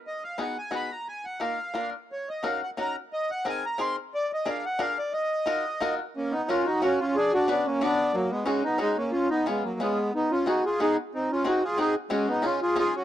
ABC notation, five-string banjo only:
X:1
M:3/4
L:1/8
Q:1/4=180
K:Ebm
V:1 name="Five-string banjo"
z2 [CEGA] z [CEGA] z | z2 [B,EFB] z [B,=DFB] z | z2 [DEGB] z [DEGB] z | z2 [=CEAB] z [CEAB] z |
z2 [=DFAB] z [DFAB] z | z2 [EFGB] z [EFGB] z | [K:F#] z2 [CEFA] z [CEFA] z | z2 [C=DFB] z [CDFB] z |
z2 [CDFG] z [CDFG] z | z2 [B,CEG] z [B,CEG] z | z2 [B,DFG] z [B,DFG] z | z2 [^B,DFG] z [B,DFG] z |
[G,CFG]2 [CDEG] z [CDEG] z |]